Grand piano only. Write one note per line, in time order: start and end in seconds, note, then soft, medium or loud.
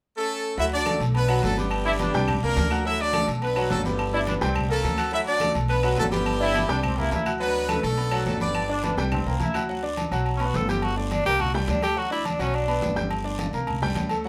0.57 0.81 F#3 medium
0.57 0.81 F#4 medium
0.57 0.81 F#5 medium
0.86 1.09 A3 medium
0.86 1.09 A4 medium
0.86 1.09 A5 medium
1.14 1.26 B3 medium
1.14 1.26 B4 medium
1.14 1.26 B5 medium
1.29 1.52 F#3 medium
1.29 1.52 F#4 loud
1.29 1.52 F#5 loud
1.57 1.80 B3 medium
1.57 1.80 B4 medium
1.57 1.81 B5 medium
1.85 1.97 D4 medium
1.85 1.97 D5 medium
1.85 1.97 D6 medium
2.00 2.11 B3 medium
2.00 2.11 B4 medium
2.00 2.12 B5 medium
2.14 2.37 G3 loud
2.14 2.38 G4 medium
2.14 2.38 G5 loud
2.43 2.66 A#3 medium
2.43 2.66 A#4 medium
2.43 2.66 A#5 medium
2.71 2.83 F#4 medium
2.71 2.83 F#5 medium
2.71 2.83 F#6 medium
2.85 3.09 F#3 medium
2.85 3.09 F#4 medium
2.85 3.09 F#5 medium
3.14 3.37 A3 medium
3.14 3.37 A4 medium
3.14 3.37 A5 medium
3.42 3.54 B3 medium
3.42 3.54 B4 medium
3.42 3.54 B5 medium
3.56 3.80 F#3 loud
3.56 3.80 F#4 loud
3.56 3.80 F#5 loud
3.85 4.08 B3 medium
3.85 4.08 B4 medium
3.85 4.08 B5 medium
4.14 4.25 D4 medium
4.14 4.25 D5 medium
4.14 4.25 D6 medium
4.27 4.39 B3 medium
4.27 4.39 B4 medium
4.27 4.39 B5 medium
4.41 4.65 G3 loud
4.41 4.65 G4 medium
4.41 4.65 G5 medium
4.69 4.93 A#3 medium
4.69 4.93 A#4 medium
4.69 4.93 A#5 medium
4.98 5.10 F#4 medium
4.98 5.10 F#5 medium
4.98 5.10 F#6 medium
5.12 5.36 F#3 medium
5.12 5.36 F#4 medium
5.12 5.36 F#5 medium
5.41 5.64 A3 medium
5.41 5.64 A4 medium
5.41 5.64 A5 medium
5.69 5.81 B3 medium
5.69 5.81 B4 medium
5.69 5.81 B5 medium
5.84 6.07 F#3 medium
5.84 6.07 F#4 medium
5.84 6.07 F#5 loud
6.12 6.36 B3 medium
6.12 6.36 B4 medium
6.12 6.36 B5 medium
6.40 6.52 D4 medium
6.40 6.52 D5 medium
6.40 6.52 D6 medium
6.54 6.66 B3 medium
6.54 6.67 B4 medium
6.54 6.67 B5 medium
6.69 6.92 G3 medium
6.69 6.92 G4 medium
6.69 6.93 G5 loud
6.98 7.21 A#3 medium
6.98 7.21 A#4 medium
6.98 7.21 A#5 medium
7.26 7.38 F#4 medium
7.26 7.38 F#5 medium
7.26 7.38 F#6 medium
7.40 7.64 F#3 medium
7.40 7.64 F#4 medium
7.40 7.64 F#5 medium
7.69 7.92 A3 medium
7.69 7.92 A4 medium
7.69 7.92 A5 medium
7.97 8.09 B3 medium
7.97 8.09 B4 medium
7.97 8.09 B5 medium
8.11 8.35 F#3 loud
8.11 8.35 F#4 loud
8.11 8.35 F#5 loud
8.40 8.64 B3 medium
8.40 8.64 B4 medium
8.40 8.64 B5 medium
8.69 8.81 D4 medium
8.69 8.81 D5 medium
8.69 8.81 D6 medium
8.84 8.95 B3 medium
8.84 8.95 B4 medium
8.84 8.95 B5 medium
8.98 9.21 G3 medium
8.98 9.21 G4 medium
8.98 9.21 G5 medium
9.26 9.49 A#3 medium
9.26 9.50 A#4 medium
9.26 9.50 A#5 medium
9.55 9.66 F#4 medium
9.55 9.66 F#5 medium
9.55 9.66 F#6 medium
9.69 9.81 F#3 medium
9.69 9.81 F#4 medium
9.69 9.81 F#5 medium
9.83 10.06 D4 medium
9.83 10.06 D5 medium
9.83 10.07 D6 medium
10.11 10.35 F#3 loud
10.11 10.35 F#4 medium
10.11 10.35 F#5 medium
10.40 10.63 B3 medium
10.40 10.63 B4 medium
10.40 10.64 B5 medium
10.69 10.92 G4 medium
10.69 10.92 G5 medium
10.69 10.92 G6 medium
10.97 11.20 D4 medium
10.97 11.20 D5 medium
10.97 11.21 D6 medium
11.26 11.49 A#3 medium
11.26 11.49 A#4 medium
11.26 11.49 A#5 medium
11.54 11.78 G3 medium
11.54 11.78 G4 loud
11.54 11.78 G5 medium
11.82 11.94 A3 medium
11.82 11.94 A4 medium
11.82 11.94 A5 medium
11.96 12.08 F#3 medium
11.96 12.08 F#4 medium
11.96 12.08 F#5 medium
12.11 12.34 D4 medium
12.11 12.34 D5 medium
12.11 12.35 D6 medium
12.39 12.62 F#3 medium
12.39 12.63 F#4 medium
12.39 12.63 F#5 medium
12.67 12.91 B3 medium
12.67 12.91 B4 medium
12.67 12.91 B5 medium
12.96 13.20 G4 medium
12.96 13.20 G5 medium
12.96 13.20 G6 medium
13.24 13.48 D4 medium
13.24 13.48 D5 medium
13.24 13.48 D6 medium
13.54 13.77 A#3 medium
13.54 13.77 A#4 medium
13.54 13.77 A#5 medium
13.82 14.05 G3 medium
13.82 14.05 G4 medium
13.82 14.06 G5 loud
14.10 14.22 A3 medium
14.10 14.22 A4 medium
14.10 14.22 A5 medium
14.25 14.29 F#3 medium
14.25 14.29 F#4 medium
14.25 14.29 F#5 medium